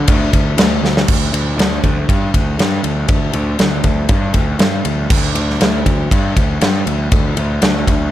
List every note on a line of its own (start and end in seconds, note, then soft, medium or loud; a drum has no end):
0.08 0.29 D2 loud
0.08 kick loud
0.08 ride loud
0.33 0.54 D2 medium
0.33 kick medium
0.33 ride medium
0.58 0.78 D2 medium
0.58 snare loud
0.58 ride loud
0.82 1.03 D2 loud
0.82 snare medium
0.97 snare medium
1.08 1.29 D2 medium
1.08 kick loud
1.08 crash loud
1.33 1.54 D2 medium
1.33 ride medium
1.58 1.79 D2 medium
1.58 snare loud
1.58 ride loud
1.84 2.04 D2 medium
1.84 kick medium
1.84 ride medium
2.09 2.30 G2 medium
2.09 kick loud
2.09 ride medium
2.34 2.55 D2 medium
2.34 kick medium
2.34 ride medium
2.58 2.79 G2 medium
2.58 snare medium
2.58 ride medium
2.83 3.04 D2 medium
2.83 ride medium
3.08 3.30 D2 medium
3.08 kick loud
3.08 ride medium
3.33 3.55 D2 medium
3.33 ride medium
3.59 3.80 D2 medium
3.59 snare loud
3.59 ride medium
3.84 4.05 D2 medium
3.84 kick medium
3.84 ride medium
4.09 4.30 G2 loud
4.09 kick loud
4.09 ride loud
4.34 4.55 D2 medium
4.34 kick medium
4.34 ride medium
4.59 4.80 G2 medium
4.59 snare loud
4.59 ride medium
4.85 5.06 D2 medium
4.85 ride medium
5.10 5.31 D2 medium
5.10 kick loud
5.10 crash loud
5.35 5.56 D2 medium
5.35 ride medium
5.50 snare soft
5.61 5.82 D2 loud
5.61 snare loud
5.61 ride medium
5.86 6.07 D2 medium
5.86 kick medium
5.86 ride medium
6.11 6.32 G2 loud
6.11 kick loud
6.11 ride loud
6.37 6.57 D2 medium
6.37 kick medium
6.37 ride medium
6.61 6.83 G2 medium
6.61 snare loud
6.61 ride medium
6.86 7.08 D2 medium
6.86 ride medium
7.12 7.33 D2 medium
7.12 kick loud
7.12 ride loud
7.37 7.58 D2 medium
7.37 ride medium
7.62 7.83 D2 medium
7.62 snare loud
7.62 ride medium
7.87 8.08 D2 medium
7.87 kick medium
7.87 ride medium